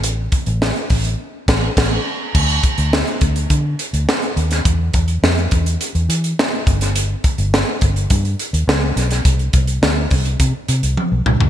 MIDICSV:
0, 0, Header, 1, 3, 480
1, 0, Start_track
1, 0, Tempo, 575816
1, 29, Time_signature, 4, 2, 24, 8
1, 9583, End_track
2, 0, Start_track
2, 0, Title_t, "Fingered electric bass"
2, 0, Program_c, 0, 33
2, 28, Note_on_c, 0, 33, 109
2, 225, Note_off_c, 0, 33, 0
2, 391, Note_on_c, 0, 33, 100
2, 588, Note_off_c, 0, 33, 0
2, 753, Note_on_c, 0, 33, 94
2, 949, Note_off_c, 0, 33, 0
2, 1234, Note_on_c, 0, 33, 110
2, 1398, Note_off_c, 0, 33, 0
2, 1475, Note_on_c, 0, 33, 102
2, 1639, Note_off_c, 0, 33, 0
2, 1957, Note_on_c, 0, 38, 111
2, 2153, Note_off_c, 0, 38, 0
2, 2318, Note_on_c, 0, 38, 101
2, 2514, Note_off_c, 0, 38, 0
2, 2681, Note_on_c, 0, 38, 87
2, 2876, Note_off_c, 0, 38, 0
2, 2920, Note_on_c, 0, 50, 101
2, 3115, Note_off_c, 0, 50, 0
2, 3278, Note_on_c, 0, 38, 79
2, 3376, Note_off_c, 0, 38, 0
2, 3639, Note_on_c, 0, 39, 90
2, 3835, Note_off_c, 0, 39, 0
2, 3879, Note_on_c, 0, 40, 104
2, 4075, Note_off_c, 0, 40, 0
2, 4117, Note_on_c, 0, 40, 89
2, 4314, Note_off_c, 0, 40, 0
2, 4357, Note_on_c, 0, 41, 90
2, 4554, Note_off_c, 0, 41, 0
2, 4601, Note_on_c, 0, 40, 84
2, 4796, Note_off_c, 0, 40, 0
2, 4959, Note_on_c, 0, 40, 95
2, 5057, Note_off_c, 0, 40, 0
2, 5076, Note_on_c, 0, 52, 102
2, 5273, Note_off_c, 0, 52, 0
2, 5561, Note_on_c, 0, 31, 106
2, 5951, Note_off_c, 0, 31, 0
2, 6155, Note_on_c, 0, 31, 99
2, 6351, Note_off_c, 0, 31, 0
2, 6518, Note_on_c, 0, 31, 85
2, 6713, Note_off_c, 0, 31, 0
2, 6758, Note_on_c, 0, 43, 104
2, 6952, Note_off_c, 0, 43, 0
2, 7113, Note_on_c, 0, 39, 93
2, 7211, Note_off_c, 0, 39, 0
2, 7232, Note_on_c, 0, 37, 115
2, 7428, Note_off_c, 0, 37, 0
2, 7471, Note_on_c, 0, 35, 106
2, 7667, Note_off_c, 0, 35, 0
2, 7713, Note_on_c, 0, 36, 104
2, 7908, Note_off_c, 0, 36, 0
2, 7950, Note_on_c, 0, 36, 91
2, 8146, Note_off_c, 0, 36, 0
2, 8187, Note_on_c, 0, 38, 89
2, 8384, Note_off_c, 0, 38, 0
2, 8428, Note_on_c, 0, 36, 95
2, 8624, Note_off_c, 0, 36, 0
2, 8668, Note_on_c, 0, 48, 112
2, 8766, Note_off_c, 0, 48, 0
2, 8908, Note_on_c, 0, 48, 91
2, 9006, Note_off_c, 0, 48, 0
2, 9028, Note_on_c, 0, 36, 86
2, 9125, Note_off_c, 0, 36, 0
2, 9268, Note_on_c, 0, 35, 90
2, 9365, Note_off_c, 0, 35, 0
2, 9383, Note_on_c, 0, 36, 101
2, 9482, Note_off_c, 0, 36, 0
2, 9501, Note_on_c, 0, 37, 80
2, 9583, Note_off_c, 0, 37, 0
2, 9583, End_track
3, 0, Start_track
3, 0, Title_t, "Drums"
3, 30, Note_on_c, 9, 42, 103
3, 113, Note_off_c, 9, 42, 0
3, 266, Note_on_c, 9, 42, 72
3, 269, Note_on_c, 9, 36, 94
3, 350, Note_off_c, 9, 42, 0
3, 353, Note_off_c, 9, 36, 0
3, 387, Note_on_c, 9, 42, 47
3, 470, Note_off_c, 9, 42, 0
3, 516, Note_on_c, 9, 38, 98
3, 599, Note_off_c, 9, 38, 0
3, 632, Note_on_c, 9, 42, 36
3, 716, Note_off_c, 9, 42, 0
3, 748, Note_on_c, 9, 46, 82
3, 753, Note_on_c, 9, 36, 92
3, 831, Note_off_c, 9, 46, 0
3, 837, Note_off_c, 9, 36, 0
3, 874, Note_on_c, 9, 42, 52
3, 957, Note_off_c, 9, 42, 0
3, 1233, Note_on_c, 9, 49, 77
3, 1234, Note_on_c, 9, 36, 102
3, 1241, Note_on_c, 9, 38, 103
3, 1317, Note_off_c, 9, 49, 0
3, 1318, Note_off_c, 9, 36, 0
3, 1324, Note_off_c, 9, 38, 0
3, 1475, Note_on_c, 9, 36, 108
3, 1476, Note_on_c, 9, 49, 85
3, 1484, Note_on_c, 9, 38, 110
3, 1559, Note_off_c, 9, 36, 0
3, 1559, Note_off_c, 9, 49, 0
3, 1567, Note_off_c, 9, 38, 0
3, 1958, Note_on_c, 9, 36, 107
3, 1958, Note_on_c, 9, 49, 102
3, 2041, Note_off_c, 9, 36, 0
3, 2041, Note_off_c, 9, 49, 0
3, 2079, Note_on_c, 9, 42, 36
3, 2162, Note_off_c, 9, 42, 0
3, 2195, Note_on_c, 9, 42, 78
3, 2197, Note_on_c, 9, 36, 98
3, 2278, Note_off_c, 9, 42, 0
3, 2281, Note_off_c, 9, 36, 0
3, 2315, Note_on_c, 9, 42, 51
3, 2399, Note_off_c, 9, 42, 0
3, 2444, Note_on_c, 9, 38, 104
3, 2528, Note_off_c, 9, 38, 0
3, 2561, Note_on_c, 9, 42, 37
3, 2644, Note_off_c, 9, 42, 0
3, 2676, Note_on_c, 9, 42, 82
3, 2680, Note_on_c, 9, 36, 85
3, 2760, Note_off_c, 9, 42, 0
3, 2764, Note_off_c, 9, 36, 0
3, 2799, Note_on_c, 9, 42, 54
3, 2882, Note_off_c, 9, 42, 0
3, 2918, Note_on_c, 9, 42, 90
3, 2920, Note_on_c, 9, 36, 88
3, 3002, Note_off_c, 9, 42, 0
3, 3003, Note_off_c, 9, 36, 0
3, 3161, Note_on_c, 9, 42, 81
3, 3244, Note_off_c, 9, 42, 0
3, 3282, Note_on_c, 9, 42, 56
3, 3366, Note_off_c, 9, 42, 0
3, 3407, Note_on_c, 9, 38, 127
3, 3490, Note_off_c, 9, 38, 0
3, 3519, Note_on_c, 9, 42, 33
3, 3602, Note_off_c, 9, 42, 0
3, 3643, Note_on_c, 9, 42, 69
3, 3726, Note_off_c, 9, 42, 0
3, 3756, Note_on_c, 9, 42, 54
3, 3765, Note_on_c, 9, 38, 36
3, 3840, Note_off_c, 9, 42, 0
3, 3848, Note_off_c, 9, 38, 0
3, 3879, Note_on_c, 9, 36, 110
3, 3879, Note_on_c, 9, 42, 105
3, 3962, Note_off_c, 9, 42, 0
3, 3963, Note_off_c, 9, 36, 0
3, 4114, Note_on_c, 9, 42, 82
3, 4118, Note_on_c, 9, 36, 98
3, 4197, Note_off_c, 9, 42, 0
3, 4202, Note_off_c, 9, 36, 0
3, 4233, Note_on_c, 9, 42, 51
3, 4317, Note_off_c, 9, 42, 0
3, 4365, Note_on_c, 9, 38, 96
3, 4448, Note_off_c, 9, 38, 0
3, 4480, Note_on_c, 9, 42, 37
3, 4563, Note_off_c, 9, 42, 0
3, 4595, Note_on_c, 9, 42, 78
3, 4601, Note_on_c, 9, 36, 87
3, 4679, Note_off_c, 9, 42, 0
3, 4684, Note_off_c, 9, 36, 0
3, 4721, Note_on_c, 9, 42, 55
3, 4804, Note_off_c, 9, 42, 0
3, 4841, Note_on_c, 9, 42, 85
3, 4924, Note_off_c, 9, 42, 0
3, 4961, Note_on_c, 9, 42, 36
3, 5045, Note_off_c, 9, 42, 0
3, 5083, Note_on_c, 9, 42, 80
3, 5166, Note_off_c, 9, 42, 0
3, 5202, Note_on_c, 9, 42, 52
3, 5285, Note_off_c, 9, 42, 0
3, 5330, Note_on_c, 9, 38, 124
3, 5413, Note_off_c, 9, 38, 0
3, 5559, Note_on_c, 9, 36, 110
3, 5564, Note_on_c, 9, 42, 69
3, 5643, Note_off_c, 9, 36, 0
3, 5647, Note_off_c, 9, 42, 0
3, 5677, Note_on_c, 9, 42, 63
3, 5686, Note_on_c, 9, 38, 35
3, 5761, Note_off_c, 9, 42, 0
3, 5769, Note_off_c, 9, 38, 0
3, 5798, Note_on_c, 9, 42, 109
3, 5881, Note_off_c, 9, 42, 0
3, 6035, Note_on_c, 9, 42, 74
3, 6038, Note_on_c, 9, 36, 95
3, 6119, Note_off_c, 9, 42, 0
3, 6121, Note_off_c, 9, 36, 0
3, 6154, Note_on_c, 9, 42, 52
3, 6237, Note_off_c, 9, 42, 0
3, 6284, Note_on_c, 9, 38, 99
3, 6367, Note_off_c, 9, 38, 0
3, 6513, Note_on_c, 9, 42, 77
3, 6518, Note_on_c, 9, 36, 90
3, 6596, Note_off_c, 9, 42, 0
3, 6602, Note_off_c, 9, 36, 0
3, 6637, Note_on_c, 9, 42, 50
3, 6721, Note_off_c, 9, 42, 0
3, 6753, Note_on_c, 9, 42, 96
3, 6756, Note_on_c, 9, 36, 97
3, 6836, Note_off_c, 9, 42, 0
3, 6839, Note_off_c, 9, 36, 0
3, 6876, Note_on_c, 9, 42, 33
3, 6960, Note_off_c, 9, 42, 0
3, 6998, Note_on_c, 9, 42, 80
3, 7081, Note_off_c, 9, 42, 0
3, 7119, Note_on_c, 9, 42, 57
3, 7202, Note_off_c, 9, 42, 0
3, 7244, Note_on_c, 9, 38, 123
3, 7327, Note_off_c, 9, 38, 0
3, 7477, Note_on_c, 9, 42, 66
3, 7481, Note_on_c, 9, 38, 35
3, 7561, Note_off_c, 9, 42, 0
3, 7565, Note_off_c, 9, 38, 0
3, 7591, Note_on_c, 9, 42, 61
3, 7599, Note_on_c, 9, 38, 35
3, 7674, Note_off_c, 9, 42, 0
3, 7683, Note_off_c, 9, 38, 0
3, 7711, Note_on_c, 9, 36, 105
3, 7711, Note_on_c, 9, 42, 110
3, 7795, Note_off_c, 9, 36, 0
3, 7795, Note_off_c, 9, 42, 0
3, 7830, Note_on_c, 9, 42, 36
3, 7914, Note_off_c, 9, 42, 0
3, 7946, Note_on_c, 9, 42, 81
3, 7950, Note_on_c, 9, 36, 98
3, 8029, Note_off_c, 9, 42, 0
3, 8033, Note_off_c, 9, 36, 0
3, 8065, Note_on_c, 9, 42, 53
3, 8148, Note_off_c, 9, 42, 0
3, 8193, Note_on_c, 9, 38, 99
3, 8276, Note_off_c, 9, 38, 0
3, 8424, Note_on_c, 9, 46, 78
3, 8430, Note_on_c, 9, 36, 91
3, 8507, Note_off_c, 9, 46, 0
3, 8513, Note_off_c, 9, 36, 0
3, 8549, Note_on_c, 9, 42, 53
3, 8632, Note_off_c, 9, 42, 0
3, 8667, Note_on_c, 9, 42, 96
3, 8668, Note_on_c, 9, 36, 89
3, 8750, Note_off_c, 9, 42, 0
3, 8751, Note_off_c, 9, 36, 0
3, 8907, Note_on_c, 9, 42, 79
3, 8990, Note_off_c, 9, 42, 0
3, 9029, Note_on_c, 9, 42, 52
3, 9112, Note_off_c, 9, 42, 0
3, 9148, Note_on_c, 9, 48, 60
3, 9231, Note_off_c, 9, 48, 0
3, 9387, Note_on_c, 9, 45, 89
3, 9470, Note_off_c, 9, 45, 0
3, 9507, Note_on_c, 9, 43, 92
3, 9583, Note_off_c, 9, 43, 0
3, 9583, End_track
0, 0, End_of_file